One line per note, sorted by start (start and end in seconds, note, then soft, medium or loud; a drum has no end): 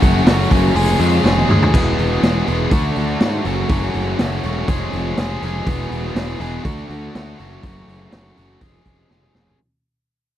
0.01 0.21 F#1 medium
0.01 0.25 F#2 medium
0.01 0.26 C#3 medium
0.01 0.26 F#3 loud
0.01 0.26 A3 loud
0.01 0.27 C#4 medium
0.01 0.27 F#4 loud
0.01 kick medium
0.01 open hi-hat medium
0.26 0.45 F#1 medium
0.26 0.49 F#2 loud
0.26 0.50 C#3 medium
0.26 0.50 F#3 loud
0.26 0.50 A3 loud
0.26 0.50 C#4 loud
0.26 0.51 F#4 loud
0.26 snare loud
0.26 open hi-hat medium
0.50 0.70 F#1 loud
0.50 0.74 F#2 medium
0.50 0.74 C#3 medium
0.50 0.74 F#3 medium
0.50 0.74 A3 loud
0.50 0.75 C#4 medium
0.50 0.75 F#4 medium
0.50 kick medium
0.50 open hi-hat medium
0.75 0.94 F1 loud
0.75 0.99 F3 loud
0.75 1.00 G#3 loud
0.75 0.99 C#4 loud
0.75 1.00 G#4 loud
0.75 open hi-hat loud
1.00 1.18 F2 loud
1.00 1.23 F3 medium
1.00 1.23 G#3 medium
1.00 1.24 C#4 medium
1.00 1.24 G#4 medium
1.00 open hi-hat medium
1.24 1.43 F1 medium
1.24 1.48 F3 loud
1.24 1.47 G#3 loud
1.24 1.48 C#4 loud
1.24 1.49 G#4 loud
1.24 snare medium
1.38 high tom medium
1.49 1.67 D2 medium
1.49 1.72 F3 medium
1.49 1.72 G#3 medium
1.49 1.72 C#4 loud
1.49 1.73 G#4 loud
1.49 mid tom medium
1.62 floor tom loud
1.73 1.92 E1 medium
1.73 2.21 E2 medium
1.73 2.22 B2 medium
1.73 2.22 E3 medium
1.73 2.22 G#3 medium
1.73 2.23 B3 medium
1.73 2.23 G#4 loud
1.73 kick loud
1.73 crash medium
1.99 2.17 E1 medium
1.99 open hi-hat soft
2.23 2.41 E1 medium
2.23 2.45 E2 medium
2.23 2.46 B2 medium
2.23 2.46 E3 medium
2.23 2.47 G#3 medium
2.23 2.47 B3 medium
2.23 2.47 G#4 medium
2.23 snare loud
2.23 open hi-hat medium
2.47 2.66 E1 medium
2.47 2.70 E2 medium
2.47 2.70 B2 medium
2.47 2.70 E3 medium
2.47 2.71 G#3 medium
2.47 2.71 B3 medium
2.47 2.71 G#4 medium
2.47 open hi-hat soft
2.71 2.90 D2 medium
2.71 3.19 D3 medium
2.71 3.20 A3 loud
2.71 3.20 D4 loud
2.71 3.20 F#4 loud
2.71 kick loud
2.71 open hi-hat medium
2.96 3.15 D2 medium
2.96 open hi-hat soft
3.20 3.39 G#2 medium
3.20 3.44 D3 medium
3.20 3.44 A3 medium
3.20 3.44 D4 medium
3.20 3.44 F#4 medium
3.20 snare loud
3.20 open hi-hat medium
3.45 3.64 F#1 medium
3.45 3.69 F#2 medium
3.45 3.70 C#3 medium
3.45 3.70 F#3 medium
3.45 3.70 A3 medium
3.45 3.70 C#4 loud
3.45 3.71 F#4 loud
3.45 open hi-hat medium
3.69 3.88 F#1 medium
3.69 4.19 F#2 medium
3.69 4.19 C#3 medium
3.69 4.19 F#3 medium
3.69 4.19 A3 medium
3.69 4.19 C#4 loud
3.69 4.20 F#4 medium
3.69 kick loud
3.69 open hi-hat medium
3.94 4.13 F#1 medium
3.94 open hi-hat soft
4.19 4.38 F#1 medium
4.19 4.43 F#2 medium
4.19 4.43 C#3 medium
4.19 4.44 F#3 medium
4.19 4.44 A3 medium
4.19 4.44 C#4 medium
4.19 4.45 F#4 medium
4.19 snare loud
4.19 open hi-hat medium
4.43 4.62 E1 medium
4.43 4.67 F#2 medium
4.43 4.67 C#3 medium
4.43 4.67 F#3 medium
4.43 4.68 A3 medium
4.43 4.68 C#4 medium
4.43 4.68 F#4 medium
4.43 open hi-hat medium
4.68 4.87 F1 medium
4.68 5.17 F3 medium
4.68 5.17 G#3 loud
4.68 5.18 C#4 medium
4.68 5.18 G#4 loud
4.68 kick loud
4.68 open hi-hat medium
4.93 5.11 F1 medium
4.93 open hi-hat soft
5.17 5.36 F1 medium
5.17 5.42 F3 medium
5.17 5.42 G#3 medium
5.17 5.43 C#4 medium
5.17 5.43 G#4 medium
5.17 snare loud
5.17 open hi-hat medium
5.42 5.60 F1 medium
5.42 5.66 F3 medium
5.42 5.66 G#3 medium
5.42 5.66 C#4 medium
5.42 5.66 G#4 medium
5.42 open hi-hat soft
5.67 5.85 E1 medium
5.67 6.15 E2 medium
5.67 6.15 B2 medium
5.67 6.15 E3 medium
5.67 6.15 G#3 medium
5.67 6.16 B3 loud
5.67 6.16 G#4 loud
5.67 kick loud
5.67 open hi-hat medium
5.91 6.09 E1 medium
5.91 open hi-hat soft
6.04 snare soft
6.15 6.34 E1 medium
6.15 6.38 E2 medium
6.15 6.39 B2 medium
6.15 6.39 E3 medium
6.15 6.39 G#3 medium
6.15 6.40 B3 medium
6.15 6.40 G#4 medium
6.15 snare loud
6.15 open hi-hat medium
6.40 6.58 E1 medium
6.40 6.63 E2 medium
6.40 6.63 B2 medium
6.40 6.63 E3 medium
6.40 6.63 G#3 medium
6.40 6.64 B3 medium
6.40 6.64 G#4 medium
6.40 open hi-hat soft
6.64 6.83 D2 medium
6.64 7.13 D3 medium
6.64 7.14 A3 loud
6.64 7.14 D4 medium
6.64 7.14 F#4 medium
6.64 kick loud
6.64 open hi-hat medium
6.90 7.08 D2 medium
6.90 open hi-hat soft
7.14 7.33 D2 medium
7.14 7.37 D3 medium
7.14 7.37 A3 medium
7.14 7.37 D4 medium
7.14 7.38 F#4 medium
7.14 snare loud
7.14 open hi-hat medium
7.37 7.58 F#1 medium
7.37 7.61 F#2 medium
7.37 7.62 C#3 loud
7.37 7.62 F#3 loud
7.37 7.62 A3 loud
7.37 7.63 C#4 loud
7.37 7.63 F#4 loud
7.37 open hi-hat soft
7.63 7.81 F#1 medium
7.63 8.10 F#2 medium
7.63 8.11 C#3 medium
7.63 8.11 F#3 medium
7.63 8.11 A3 medium
7.63 8.11 C#4 medium
7.63 8.12 F#4 loud
7.63 kick loud
7.63 open hi-hat medium
7.88 8.06 F#1 medium
7.88 open hi-hat soft
8.11 8.31 F#1 medium
8.11 8.35 F#2 medium
8.11 8.36 C#3 medium
8.11 8.36 F#3 medium
8.11 8.36 A3 medium
8.11 8.37 C#4 medium
8.11 8.37 F#4 medium
8.11 snare loud
8.11 open hi-hat medium
8.36 8.56 F#1 medium
8.36 8.60 F#2 medium
8.36 8.60 C#3 medium
8.36 8.60 F#3 medium
8.36 8.60 A3 medium
8.36 8.60 C#4 medium
8.36 8.60 F#4 medium
8.36 open hi-hat soft
8.61 8.79 F1 medium
8.61 9.09 F3 medium
8.61 9.09 G#3 medium
8.61 9.10 C#4 medium
8.61 9.10 G#4 medium
8.61 kick loud
8.61 open hi-hat medium
8.86 9.04 F1 medium
8.86 kick medium
8.86 open hi-hat soft
9.10 9.29 F1 medium
9.10 9.34 F3 medium
9.10 9.34 G#3 medium
9.10 9.34 C#4 medium
9.10 9.35 G#4 medium
9.10 snare soft
9.22 mid tom soft
9.35 9.54 F1 medium
9.35 9.58 F3 medium
9.35 9.58 G#3 medium
9.35 9.58 C#4 medium
9.35 9.58 G#4 medium
9.35 snare medium
9.47 floor tom medium